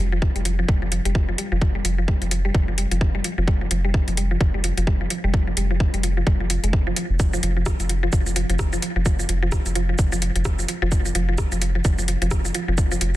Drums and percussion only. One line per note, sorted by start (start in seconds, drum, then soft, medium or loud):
0.22 kick loud
0.36 closed hi-hat soft
0.45 closed hi-hat medium
0.69 kick loud
0.92 closed hi-hat medium
1.05 closed hi-hat soft
1.15 kick loud
1.38 closed hi-hat medium
1.62 kick loud
1.85 closed hi-hat medium
2.08 kick loud
2.22 closed hi-hat soft
2.31 closed hi-hat medium
2.55 kick loud
2.78 closed hi-hat loud
2.91 closed hi-hat soft
3.01 kick loud
3.24 closed hi-hat medium
3.48 kick loud
3.71 closed hi-hat loud
3.94 kick loud
4.08 closed hi-hat soft
4.17 closed hi-hat medium
4.41 kick loud
4.64 closed hi-hat loud
4.77 closed hi-hat soft
4.87 kick loud
5.10 closed hi-hat medium
5.34 kick loud
5.57 closed hi-hat medium
5.80 kick loud
5.94 closed hi-hat soft
6.03 closed hi-hat medium
6.27 kick loud
6.50 closed hi-hat loud
6.64 closed hi-hat soft
6.73 kick loud
6.96 closed hi-hat medium
7.20 kick loud
7.20 shaker medium
7.33 shaker soft
7.43 closed hi-hat medium
7.66 kick loud
7.66 cross-stick medium
7.66 shaker medium
7.80 closed hi-hat soft
7.80 shaker soft
7.89 closed hi-hat medium
8.13 kick loud
8.13 shaker medium
8.26 shaker soft
8.36 closed hi-hat loud
8.50 closed hi-hat soft
8.59 kick loud
8.59 cross-stick medium
8.59 shaker medium
8.73 shaker soft
8.82 closed hi-hat medium
9.06 kick loud
9.06 shaker medium
9.19 shaker soft
9.29 closed hi-hat medium
9.52 kick loud
9.52 cross-stick medium
9.52 shaker medium
9.66 closed hi-hat soft
9.66 shaker soft
9.75 closed hi-hat medium
9.99 kick loud
9.99 shaker medium
10.12 shaker soft
10.22 closed hi-hat medium
10.36 closed hi-hat soft
10.45 kick loud
10.45 cross-stick medium
10.45 shaker medium
10.59 shaker soft
10.68 closed hi-hat medium
10.92 kick loud
10.92 shaker medium
11.05 shaker soft
11.15 closed hi-hat medium
11.38 kick loud
11.38 cross-stick medium
11.38 shaker medium
11.52 closed hi-hat soft
11.52 shaker soft
11.62 closed hi-hat medium
11.85 kick loud
11.85 shaker medium
11.98 shaker soft
12.08 closed hi-hat medium
12.22 closed hi-hat soft
12.31 kick loud
12.31 cross-stick medium
12.31 shaker medium
12.45 shaker soft
12.54 closed hi-hat medium
12.78 kick loud
12.78 shaker medium
12.91 shaker soft
13.01 closed hi-hat medium